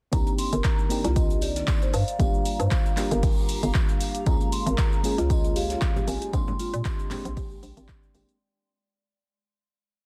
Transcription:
0.12 fm bass C2, ambient pad D#3, fm electric piano A#3 C4 D4 D#4 G4, vibraphone A#5, kick, closed hi-hat, tambourine, cabasa
0.27 closed hi-hat, cabasa
0.38 vibraphone C6, open hi-hat, tambourine, cabasa
0.53 fm bass G1, marimba A#4, closed hi-hat, cabasa
0.64 vibraphone A#5, kick, snare, clap, closed hi-hat, tambourine, cabasa
0.79 cabasa
0.89 fm electric piano A#3 C4 D4 D#4 G4, ambient pad D5, open hi-hat, tambourine, cabasa
0.95 ambient pad A#5
1.04 fm bass C2, marimba F4, snare, closed hi-hat, cabasa
1.16 vibraphone D#5, kick, closed hi-hat, tambourine, cabasa
1.30 closed hi-hat, cabasa
1.41 marimba G4, vibraphone D5, open hi-hat, tambourine, cabasa
1.56 snare, closed hi-hat, cabasa
1.68 kick, snare, clap, closed hi-hat, tambourine, cabasa
1.82 marimba C5, closed hi-hat, cabasa
1.93 fm bass G2, ambient pad G4, marimba C5, vibraphone F5, open hi-hat, tambourine, cabasa
2.08 closed hi-hat, cabasa
2.19 fm bass G1, fm electric piano G3 A#3 D4 F4 G4, vibraphone F5, kick, closed hi-hat, tambourine, cabasa
2.34 cabasa
2.39 ambient pad F5
2.45 open hi-hat, tambourine, cabasa
2.60 fm bass G2, marimba C5, closed hi-hat, cabasa
2.71 kick, snare, clap, closed hi-hat, tambourine, cabasa
2.86 closed hi-hat, cabasa
2.96 fm electric piano G3 A#3 D4 F4 G4, clap, open hi-hat, tambourine, cabasa
3.11 fm bass G1, marimba A#4, closed hi-hat, cabasa
3.23 kick, closed hi-hat, open hi-hat, cabasa
3.37 cabasa
3.49 open hi-hat, tambourine, cabasa
3.63 fm bass G1, closed hi-hat, cabasa
3.74 kick, snare, clap, closed hi-hat, tambourine, cabasa
3.89 closed hi-hat, cabasa
4.01 open hi-hat, tambourine, cabasa
4.15 closed hi-hat, cabasa
4.26 fm bass C#2, fm electric piano G#3 A#3 C#4 F4 G#4, ambient pad F4, vibraphone A#5, kick, closed hi-hat, tambourine, cabasa
4.41 closed hi-hat, cabasa
4.52 vibraphone C6, open hi-hat, tambourine, cabasa
4.57 ambient pad C#5
4.66 fm bass G#1, marimba A#4, closed hi-hat, cabasa
4.78 vibraphone A#5, kick, snare, clap, closed hi-hat, tambourine, cabasa
4.93 cabasa
5.03 fm electric piano G#3 A#3 C#4 F4 G#4, open hi-hat, tambourine, cabasa
5.18 fm bass C#2, marimba F4, snare, closed hi-hat, cabasa
5.30 vibraphone D#5, kick, closed hi-hat, tambourine, cabasa
5.44 closed hi-hat, cabasa
5.56 marimba G4, vibraphone F5, open hi-hat, tambourine, cabasa
5.70 snare, closed hi-hat, cabasa
5.81 kick, snare, clap, closed hi-hat, tambourine, cabasa
5.96 marimba G4, closed hi-hat, low conga, cabasa
6.07 fm bass G#1, marimba G4, vibraphone G#5, open hi-hat, tambourine, cabasa
6.22 marimba G4, closed hi-hat, cabasa
6.32 fm bass A#1, fm electric piano G#3 A#3 C4 D4 G4, ambient pad G#3, vibraphone C6, kick, closed hi-hat, tambourine, cabasa
6.48 low conga, cabasa
6.59 marimba F4, open hi-hat, tambourine, cabasa
6.74 fm bass A#2, closed hi-hat, cabasa
6.85 kick, snare, clap, closed hi-hat, tambourine, cabasa
6.93 ambient pad G5
6.99 ambient pad D5, closed hi-hat, cabasa
7.07 fm electric piano G#3 A#3 C4, ambient pad C6, clap, open hi-hat, tambourine, low conga, cabasa
7.12 fm electric piano D4 G4
7.25 fm bass A#1, closed hi-hat, cabasa
7.37 marimba G4, kick, closed hi-hat, open hi-hat, cabasa
7.51 marimba G4, cabasa
7.63 fm bass A#1, open hi-hat, tambourine, cabasa
7.77 fm bass G#1, closed hi-hat, cabasa
7.88 kick, snare, clap, closed hi-hat, tambourine, cabasa
8.03 closed hi-hat, cabasa
8.14 fm bass G#1, fm electric piano G#3 A#3 C4 D4 G4, open hi-hat, tambourine, high conga, cabasa
8.29 closed hi-hat, cabasa

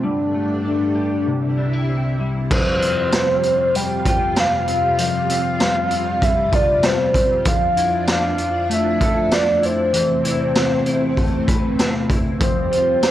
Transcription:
0.03 string machine G2 G3 A3 D4, clean electric guitar G3, soft synth lead D4
0.34 clean electric guitar A3
0.65 clean electric guitar D4, soft synth lead D4
0.95 clean electric guitar G4
1.26 string machine C2 C3 E4, clean electric guitar C3
1.58 clean electric guitar D4
1.73 clean electric guitar E4
1.89 clean electric guitar C4
2.19 clean electric guitar G3
2.50 string machine F2 C3 G3 F4, clean electric guitar F3, soft synth lead C5, kick, crash
2.81 clean electric guitar C4, closed hi-hat
3.12 clean electric guitar G3, snare, closed hi-hat, tambourine
3.43 clean electric guitar C4, closed hi-hat
3.75 clean electric guitar G3, soft synth lead G5, closed hi-hat
4.05 clean electric guitar F4, soft synth lead G5, kick, closed hi-hat
4.36 clean electric guitar G3, soft synth lead F5, snare, closed hi-hat, tambourine
4.67 clean electric guitar C4, closed hi-hat
4.98 clean electric guitar F3, soft synth lead F5, closed hi-hat
5.29 clean electric guitar C4, closed hi-hat
5.60 clean electric guitar G3, snare, closed hi-hat, tambourine
5.91 clean electric guitar C4, closed hi-hat
6.22 clean electric guitar G3, soft synth lead E5, kick, closed hi-hat
6.52 clean electric guitar F4, soft synth lead D5, kick, closed hi-hat
6.84 clean electric guitar G3, soft synth lead C5, snare, closed hi-hat, tambourine
7.15 clean electric guitar C4, kick, closed hi-hat
7.45 string machine F2 F3 D4, clean electric guitar F3, soft synth lead F5, kick, closed hi-hat
7.77 clean electric guitar E4, closed hi-hat
8.08 clean electric guitar D4, snare, closed hi-hat, tambourine
8.12 soft synth lead F5
8.38 closed hi-hat
8.69 clean electric guitar A3, soft synth lead E5, closed hi-hat
9.01 clean electric guitar A4, kick, closed hi-hat
9.32 clean electric guitar D4, soft synth lead D5, snare, closed hi-hat, tambourine
9.62 clean electric guitar E4, soft synth lead C5, closed hi-hat
9.93 string machine E2 C3 A3 C4, clean electric guitar E3, closed hi-hat
10.24 clean electric guitar E4, closed hi-hat
10.55 clean electric guitar C4, snare, closed hi-hat, tambourine
10.86 clean electric guitar E4, closed hi-hat
11.17 clean electric guitar A3, kick, closed hi-hat
11.48 clean electric guitar B4, kick, closed hi-hat
11.79 clean electric guitar C4, snare, closed hi-hat, tambourine
12.10 clean electric guitar E4, kick, closed hi-hat
12.40 string machine F2 F3 G3 C4, clean electric guitar F3, soft synth lead C5, kick, closed hi-hat
12.71 clean electric guitar F4, closed hi-hat
13.02 clean electric guitar C4, snare, closed hi-hat, tambourine

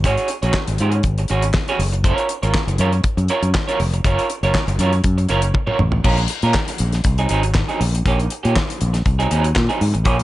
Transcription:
0.04 fingered electric bass G#1, clean electric guitar C#4 F#4 G#4 C#5, kick, closed hi-hat
0.18 closed hi-hat
0.28 muted clean electric guitar stroke, closed hi-hat
0.42 fingered electric bass A#1, clean electric guitar C#4 F#4 G#4 C#5, closed hi-hat
0.54 kick, snare, clap
0.68 fingered electric bass G#1, muted clean electric guitar stroke, closed hi-hat
0.78 fingered electric bass G#2, clean electric guitar C#4 F#4 G#4 C#5, closed hi-hat
0.92 muted clean electric guitar stroke, closed hi-hat
1.03 fingered electric bass G#1, kick, closed hi-hat
1.18 muted clean electric guitar stroke, closed hi-hat
1.28 fingered electric bass G#1, clean electric guitar C#4 F#4 G#4 C#5, closed hi-hat
1.42 muted clean electric guitar stroke, closed hi-hat
1.54 muted clean electric guitar stroke, kick, snare, clap
1.68 clean electric guitar C#4 F#4 G#4 C#5, closed hi-hat
1.79 fingered electric bass F#1, muted clean electric guitar stroke, open hi-hat
1.93 muted clean electric guitar stroke, closed hi-hat
2.04 clean electric guitar C#4 F4 A#4 C#5, kick, closed hi-hat
2.18 closed hi-hat
2.29 muted clean electric guitar stroke, closed hi-hat
2.43 fingered electric bass G#1, clean electric guitar C#4 F4 A#4 C#5, closed hi-hat
2.54 kick, snare, clap
2.67 fingered electric bass F#1, muted clean electric guitar stroke, closed hi-hat
2.78 fingered electric bass F#2, clean electric guitar C#4 F4 A#4 C#5, closed hi-hat
2.93 muted clean electric guitar stroke, closed hi-hat
3.04 muted fingered electric bass stroke, kick, closed hi-hat
3.17 fingered electric bass F#2, muted clean electric guitar stroke, closed hi-hat
3.28 clean electric guitar C#4 F4 A#4 C#5, closed hi-hat
3.42 fingered electric bass F#2, muted clean electric guitar stroke, closed hi-hat
3.54 muted clean electric guitar stroke, kick, snare, clap
3.67 clean electric guitar C#4 F4 A#4 C#5, closed hi-hat
3.80 fingered electric bass F1, muted clean electric guitar stroke, open hi-hat
3.94 muted clean electric guitar stroke, closed hi-hat
4.04 fingered electric bass F#1, clean electric guitar C#4 F4 A#4 C#5, kick, closed hi-hat
4.19 closed hi-hat
4.30 muted clean electric guitar stroke, closed hi-hat
4.43 fingered electric bass F#1, clean electric guitar C#4 F4 A#4 C#5, closed hi-hat
4.54 kick, snare, clap
4.68 fingered electric bass F#1, muted clean electric guitar stroke, closed hi-hat
4.79 fingered electric bass F#2, clean electric guitar C#4 F4 A#4 C#5, closed hi-hat
4.93 muted clean electric guitar stroke, closed hi-hat
5.04 fingered electric bass F#2, kick, closed hi-hat
5.18 muted clean electric guitar stroke, closed hi-hat
5.29 fingered electric bass F#1, clean electric guitar C#4 F4 A#4 C#5, closed hi-hat
5.42 muted clean electric guitar stroke, closed hi-hat
5.54 muted clean electric guitar stroke, kick, high tom
5.67 clean electric guitar C#4 F4 A#4 C#5, mid tom
5.78 fingered electric bass A1, muted clean electric guitar stroke, mid tom
5.92 muted clean electric guitar stroke, floor tom
6.04 fingered electric bass A#1, clean electric guitar G#3 C#4 F4 A#4, kick, crash
6.18 muted clean electric guitar stroke, closed hi-hat
6.28 muted clean electric guitar stroke, closed hi-hat
6.42 fingered electric bass A#2, clean electric guitar G#3 C#4 F4 A#4, closed hi-hat
6.54 muted clean electric guitar stroke, kick, snare, clap
6.68 muted clean electric guitar stroke, closed hi-hat
6.78 fingered electric bass A#1, closed hi-hat
6.92 muted clean electric guitar stroke, snare, closed hi-hat
7.04 fingered electric bass C2, muted clean electric guitar stroke, kick, closed hi-hat
7.18 clean electric guitar F#3 C4 D#4 G#4, closed hi-hat
7.29 fingered electric bass G#1, clean electric guitar F#3 C4 D#4 G#4, closed hi-hat
7.43 muted clean electric guitar stroke, closed hi-hat
7.55 muted clean electric guitar stroke, kick, snare, clap
7.68 clean electric guitar F#3 C4 D#4 G#4, closed hi-hat
7.81 fingered electric bass A#1, muted clean electric guitar stroke, open hi-hat
7.95 muted clean electric guitar stroke, closed hi-hat
8.06 fingered electric bass A#1, clean electric guitar D#3 A#3 C#4 G4, kick, closed hi-hat
8.20 muted clean electric guitar stroke, closed hi-hat
8.30 muted clean electric guitar stroke, closed hi-hat
8.43 fingered electric bass A#2, clean electric guitar D#3 A#3 C#4 G4, closed hi-hat
8.55 muted clean electric guitar stroke, kick, snare, clap
8.68 muted clean electric guitar stroke, closed hi-hat
8.81 fingered electric bass A#1, closed hi-hat
8.94 muted clean electric guitar stroke, snare, closed hi-hat
9.06 fingered electric bass C2, muted clean electric guitar stroke, kick, closed hi-hat
9.19 clean electric guitar F#3 C4 D#4 G#4, closed hi-hat
9.31 fingered electric bass D#2, clean electric guitar F#3 C4 D#4 G#4, closed hi-hat
9.44 muted clean electric guitar stroke, closed hi-hat
9.56 fingered electric bass A#2, muted clean electric guitar stroke, kick, snare, clap
9.69 clean electric guitar F#3 C4 D#4 G#4, closed hi-hat
9.81 fingered electric bass G#2, muted clean electric guitar stroke, open hi-hat
9.94 fingered electric bass A1, muted clean electric guitar stroke, closed hi-hat
10.05 fingered electric bass A#1, clean electric guitar F3 A#3 C#4 G#4, kick, closed hi-hat
10.18 muted clean electric guitar stroke, closed hi-hat

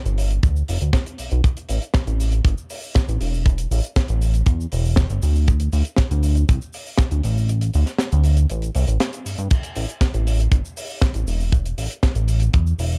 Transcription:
0.06 analog synth bass G1, closed hi-hat, shaker
0.18 open hi-hat, shaker
0.31 closed hi-hat, shaker
0.43 analog synth bass D2, kick, closed hi-hat, shaker
0.56 shaker
0.68 analog synth bass F1, open hi-hat, shaker
0.81 analog synth bass D2, closed hi-hat, shaker
0.93 kick, snare, closed hi-hat, shaker
1.06 closed hi-hat, shaker
1.18 analog synth bass B1, open hi-hat, shaker
1.31 analog synth bass B1, closed hi-hat, shaker
1.44 kick, closed hi-hat, shaker
1.57 closed hi-hat, shaker
1.69 analog synth bass A1, open hi-hat, shaker
1.82 closed hi-hat, shaker
1.94 kick, snare, closed hi-hat, shaker
2.07 analog synth bass A1, closed hi-hat, shaker
2.20 open hi-hat, shaker
2.32 closed hi-hat, shaker
2.45 analog synth bass G1, kick, closed hi-hat, shaker
2.58 shaker
2.70 open hi-hat, shaker
2.83 shaker
2.94 kick, snare, closed hi-hat, shaker
3.08 analog synth bass A1, closed hi-hat, shaker
3.21 analog synth bass E1, open hi-hat, shaker
3.34 shaker
3.46 kick, closed hi-hat, shaker
3.58 closed hi-hat, shaker
3.71 analog synth bass A1, open hi-hat, shaker
3.84 closed hi-hat, shaker
3.96 kick, snare, closed hi-hat, shaker
4.08 analog synth bass A1, closed hi-hat, shaker
4.22 open hi-hat, shaker
4.34 closed hi-hat, shaker
4.46 analog synth bass E2, kick, closed hi-hat, shaker
4.61 shaker
4.72 analog synth bass E1, open hi-hat, shaker
4.85 shaker
4.96 kick, snare, closed hi-hat, shaker
5.10 analog synth bass G1, closed hi-hat, shaker
5.22 analog synth bass D2, open hi-hat, shaker
5.36 shaker
5.48 kick, closed hi-hat, shaker
5.60 closed hi-hat, shaker
5.73 analog synth bass D2, open hi-hat, shaker
5.85 closed hi-hat, shaker
5.96 kick, snare, closed hi-hat, shaker
6.11 analog synth bass D2, closed hi-hat, shaker
6.23 open hi-hat, shaker
6.35 closed hi-hat, shaker
6.49 analog synth bass C2, kick, closed hi-hat, shaker
6.61 shaker
6.73 open hi-hat, shaker
6.87 shaker
6.98 kick, snare, closed hi-hat, shaker
7.11 analog synth bass D2, closed hi-hat, shaker
7.23 analog synth bass A1, open hi-hat, shaker
7.37 shaker
7.49 closed hi-hat, shaker
7.61 closed hi-hat, shaker
7.74 analog synth bass D2, open hi-hat, shaker
7.86 snare, closed hi-hat, shaker
7.98 snare, closed hi-hat, shaker
8.12 analog synth bass D2, closed hi-hat, shaker
8.24 open hi-hat, shaker
8.37 closed hi-hat, shaker
8.50 analog synth bass A1, closed hi-hat, shaker
8.62 closed hi-hat, shaker
8.75 analog synth bass C2, open hi-hat, shaker
8.88 analog synth bass A1, closed hi-hat, shaker
9.00 snare, closed hi-hat, shaker
9.13 closed hi-hat, shaker
9.26 analog synth bass G2, open hi-hat, shaker
9.38 analog synth bass G2, closed hi-hat, shaker
9.50 kick, closed hi-hat, crash, shaker
9.63 closed hi-hat, shaker
9.76 analog synth bass A1, open hi-hat, shaker
9.89 closed hi-hat, shaker
10.01 kick, snare, closed hi-hat, shaker
10.14 analog synth bass A1, closed hi-hat, shaker
10.27 open hi-hat, shaker
10.39 closed hi-hat, shaker
10.52 analog synth bass G1, kick, closed hi-hat, shaker
10.65 shaker
10.77 open hi-hat, shaker
10.90 shaker
11.01 kick, snare, closed hi-hat, shaker
11.14 analog synth bass A1, closed hi-hat, shaker
11.27 analog synth bass E1, open hi-hat, shaker
11.40 shaker
11.52 kick, closed hi-hat, shaker
11.66 closed hi-hat, shaker
11.78 analog synth bass A1, open hi-hat, shaker
11.91 closed hi-hat, shaker
12.03 kick, snare, closed hi-hat, shaker
12.15 analog synth bass A1, closed hi-hat, shaker
12.28 open hi-hat, shaker
12.40 closed hi-hat, shaker
12.53 analog synth bass E2, kick, closed hi-hat, shaker
12.67 shaker
12.79 analog synth bass E1, open hi-hat, shaker
12.92 shaker

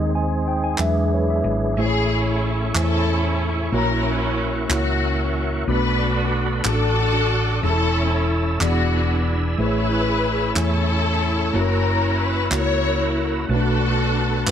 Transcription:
Already playing: fingered electric bass D#2, tine electric piano G#3 C4 D#4 D#5, tonewheel organ C4 D#4 G#4, french horn section C4 D#4 G#4 C5
0.15 tine electric piano G#5
0.48 tine electric piano G5
0.64 tine electric piano G#5
0.78 fingered electric bass E2, tonewheel organ E3 G#3 B3 D4, tine electric piano F#3 G#3 D4 E5, french horn section D4 E4 B4, clap
1.14 tine electric piano C#5
1.30 tine electric piano E5
1.44 fingered electric bass G#1
1.77 fingered electric bass A1, tine electric piano A2 A3 C#4 E4 G#4 C5, tonewheel organ A3 E5 G#5 C#6, string section C#4 E4 G#4
1.86 tine electric piano C#5
2.74 fingered electric bass E2, tine electric piano A3 C#4 E4 C5 G#5, string section C#4 E4 A4, clap
2.83 tine electric piano C#5
3.72 fingered electric bass A#1, tine electric piano A#2 A#3 C#4 E4 F#4 C#5, string section C#4 E4 A#4, tonewheel organ A#4 F#5
4.69 fingered electric bass C#2, tine electric piano A#3 C#4 E4 F#4 C#5, string section C#4 F#4, clap
5.67 fingered electric bass B1, tine electric piano B2 A3 B3 D4 F#4 B4, string section D4 F#4 B4, tonewheel organ A4 D5 B5
6.64 fingered electric bass A1, tine electric piano A2 D4 F#4 G#4, string section A4, tonewheel organ D6, clap
6.69 string section D4 F#4
6.73 tine electric piano A4
7.62 fingered electric bass E1, tine electric piano E3 C#4 E4 G#4, string section E4 A4, tonewheel organ C#5 E5 A5 E6
7.66 string section C#4
7.71 tine electric piano A4
8.60 fingered electric bass E1, tine electric piano E3 B3 D4 E4 G#4 D5, string section B3 D4 F#4, tonewheel organ D5 G#5 B5, clap
9.58 fingered electric bass A1, tine electric piano A2 A3 C#4 E4 G#4 C5, string section G#4 B4, tonewheel organ C#5 E5
9.62 string section E4
9.66 tine electric piano C#5
10.55 fingered electric bass E2, tine electric piano A3 C#4 E4 C#5 G#5, string section C#4 E4 A4, clap
11.53 fingered electric bass F#1, tine electric piano A#3 C#4 E4 F#4 C#5, string section C#4 E4 A#4, tonewheel organ F#5 A#5
12.20 string section B4
12.51 fingered electric bass C#2, tine electric piano A#3 C#4 E4 F#4 C#5, string section E4 A#4 C#5, clap
13.48 fingered electric bass B1, tine electric piano B2 A3 B3 C#4 F#4 B4, string section D4 F#4 A4, tonewheel organ B4 A5
13.56 tine electric piano D4
14.46 fingered electric bass F#1, tine electric piano A3 B3 D4 F#4, clap

